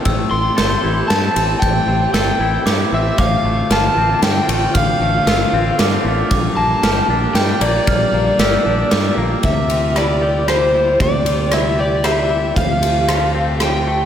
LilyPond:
<<
  \new Staff \with { instrumentName = "Glockenspiel" } { \time 3/4 \key c \mixolydian \tempo 4 = 115 e'''4 g'''4 a'''4 | g'''4 e'''4 d'''4 | d'''4 f'''4 g'''4 | f'''4 e'''4 d'''4 |
d'''4 f'''4 g'''4 | f'''4 e'''4 d'''4 | r2. | r2. |
r2. | }
  \new Staff \with { instrumentName = "Electric slide guitar" } { \time 3/4 \key c \mixolydian r8 c'''4. a''4 | g''4 g''4 r8 e''8 | f''4 a''4 g''4 | f''2~ f''8 r8 |
r8 a''4 r8 g''8 d''8~ | d''2~ d''8 r8 | e''4 d''4 c''4 | d''4 e''8 d''8 e''4 |
f''2 g''4 | }
  \new Staff \with { instrumentName = "Clean electric guitar" } { \time 3/4 \key c \mixolydian a,8 c'8 a'8 e'8 a8 c'8 | a,8 c'8 a'8 e'8 a8 c'8 | d,8 a8 f'8 c'8 d8 a8 | d,8 a8 f'8 c'8 d8 a8 |
g,8 bes8 g'8 d'8 g8 bes8 | g,8 bes8 g'8 d'8 g8 bes8 | c8 c'8 e'8 g'8 c''8 e'8 | c8 c'8 e'8 g'8 c''8 e'8 |
f,8 f8 a8 c'4 a8 | }
  \new Staff \with { instrumentName = "Analog synth pad" } { \time 3/4 \key c \mixolydian << { <e g'>2.~ | <e g'>2. | <d f'>2.~ | <d f'>2.~ |
<d f'>2.~ | <d f'>2. | <c g'>2.~ | <c g'>2.~ |
<c g'>2. | } \\ { <a c'>2.~ | <a c'>2.~ | <a c'>2.~ | <a c'>2. |
<g bes>2.~ | <g bes>2. | <g bes>2.~ | <g bes>2. |
<f a>2. | } >> }
  \new Staff \with { instrumentName = "Fingered electric bass" } { \clef bass \time 3/4 \key c \mixolydian a,,8 a,,8 g,,8 a,,8 g,8 a,,8 | a,,8 a,,8 g,,8 a,,8 g,8 a,,8 | a,,8 a,,8 g,,8 a,,8 g,8 a,,8 | a,,8 a,,8 g,,8 a,,8 g,8 a,,8 |
bes,,8 bes,,8 g,,8 bes,,8 g,8 bes,,8 | bes,,8 bes,,8 g,,8 bes,,8 g,8 bes,,8 | d,2. | d,2. |
d,2. | }
  \new DrumStaff \with { instrumentName = "Drums" } \drummode { \time 3/4 <bd cymr>4 <cymr sn>4 <cymr sn>8 cymr8 | <bd cymr>4 <cymr sn>4 <cymr sn>4 | <bd cymr>4 <cymr sn>4 <cymr sn>8 cymr8 | <bd cymr>4 <cymr sn>4 <cymr sn>4 |
<bd cymr>4 <cymr sn>4 <cymr sn>8 cymr8 | <bd cymr>4 <cymr sn>4 <cymr sn>4 | <bd cymr>8 cymr8 <cymr ss>4 <cymr ss>4 | <bd cymr>8 cymr8 <cymr ss>4 <cymr ss>4 |
<bd cymr>8 cymr8 <cymr ss>4 <cymr ss>4 | }
>>